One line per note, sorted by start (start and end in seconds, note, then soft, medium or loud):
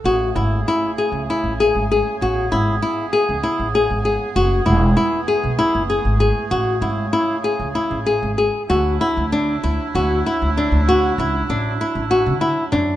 0.04 0.31 A1 medium
0.04 4.33 C#3 medium
0.04 2.20 A3 medium
0.04 0.28 F#4 medium
0.04 8.51 G#4 medium
0.35 0.62 G#1 medium
0.35 0.59 E4 medium
0.68 0.90 E4 medium
0.98 1.21 G#4 medium
1.12 1.26 C#2 medium
1.30 1.52 E4 medium
1.44 1.70 A1 medium
1.60 1.83 G#4 medium
1.75 2.01 G#1 medium
1.91 2.14 G#4 medium
2.21 2.47 A1 medium
2.21 6.48 B3 medium
2.21 2.45 F#4 medium
2.52 2.78 G#1 medium
2.52 2.75 E4 medium
2.82 3.05 E4 medium
3.13 3.36 G#4 medium
3.29 3.42 C#2 medium
3.43 3.67 E4 medium
3.59 3.85 A1 medium
3.75 3.98 G#4 medium
3.90 4.16 G#1 medium
4.05 4.28 G#4 medium
4.35 4.62 F#1 medium
4.35 6.49 E3 medium
4.35 8.51 A3 medium
4.35 4.59 F#4 medium
4.66 4.92 E1 loud
4.66 4.89 E4 medium
4.97 5.20 E4 medium
5.28 5.51 G#4 medium
5.44 5.57 B1 medium
5.59 5.82 E4 medium
5.75 6.01 F#1 medium
5.90 6.13 G#4 medium
6.05 6.31 G#1 medium
6.20 6.43 G#4 medium
6.51 6.77 A1 medium
6.51 8.51 C#3 medium
6.51 6.74 F#4 medium
6.81 7.08 G#1 medium
6.81 7.05 E4 medium
7.13 7.36 E4 medium
7.44 7.67 G#4 medium
7.60 7.73 C#2 medium
7.75 7.99 E4 medium
7.91 8.18 A1 medium
8.06 8.30 G#4 medium
8.23 8.49 G#1 medium
8.38 8.62 G#4 medium
8.68 8.96 D2 loud
8.68 12.96 F#3 medium
8.68 12.96 D4 medium
8.68 12.96 E4 medium
8.68 8.93 F#4 medium
9.01 9.24 E4 medium
9.17 9.56 D2 medium
9.32 9.55 D4 medium
9.63 9.77 D2 medium
9.63 9.87 E4 medium
9.95 10.21 D2 loud
9.95 10.18 F#4 medium
10.26 10.49 E4 medium
10.42 10.68 D2 medium
10.57 10.80 D4 medium
10.72 11.11 D2 medium
10.89 11.11 F#4 medium
11.18 11.44 C#2 loud
11.18 11.42 E4 medium
11.49 11.75 A1 medium
11.49 11.72 D4 medium
11.81 12.03 E4 medium
11.95 12.28 A1 medium
12.11 12.33 F#4 medium
12.26 12.52 D3 medium
12.41 12.64 E4 medium
12.72 12.96 F#2 loud
12.72 12.95 D4 medium